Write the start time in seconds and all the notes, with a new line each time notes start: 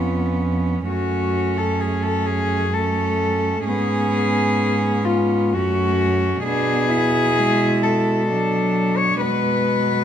Already playing: F2 B3 C#4 F4
0.88 F#2 A3 C#4 F#4
1.58 A4
1.80 G#4
2.03 A4
2.26 G#4
2.73 A3 C#4 A4
3.65 G#2 B3 C#4 G#4
5.05 F4
5.52 F#2 A3 C#4 F#4
6.44 B2 B3 D4 G#4
6.89 E4
7.39 G#3
7.83 A4
8.29 F#3 D4
8.97 C#5
9.20 B2 G#3 B3 B4